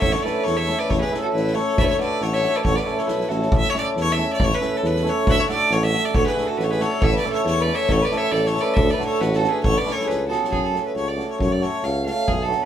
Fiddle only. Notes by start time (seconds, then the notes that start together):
0.00 E5
0.12 C#5
0.23 D5
0.44 C#5
0.56 E5
0.79 D5
0.90 C#5
1.01 B4
1.22 A4
1.32 B4
1.55 C#5
1.78 D5 E5
1.84 E5
1.90 C#5
2.00 D5
2.23 C#5
2.34 E5
2.56 D5
2.65 C#5
2.76 D5
2.99 C#5
3.08 B4
3.29 A4
3.56 E5
3.70 C#5
3.78 D5
4.01 C#5
4.13 E5
4.33 D5
4.44 C#5
4.54 B4
4.77 A4
4.87 B4
5.09 C#5
5.30 E5 F#5
5.35 E5
5.40 C#5
5.49 D5
5.73 C#5
5.83 E5
6.05 D5
6.15 C#5
6.26 B4
6.47 A4
6.58 B4
6.64 C#5
6.71 B4
6.81 C#5
7.04 E5
7.18 D5
7.32 C#5
7.47 C#5
7.62 D5
7.75 E5
7.92 C#5
8.05 D5
8.18 E5
8.31 D5
8.47 C#5
8.61 D5
8.74 E5
8.90 D5
9.05 C#5
9.21 B4
9.36 A4
9.51 B4
9.63 C#5
9.78 D5
9.92 C#5
10.08 B4
10.28 A4
10.48 G#4 A4
10.63 A4
10.86 B4
10.96 C#5
11.08 D5
11.31 C#5
11.40 C#5
11.52 D5
11.63 C#5
11.84 F5
12.06 F5
12.28 G#4
12.42 A4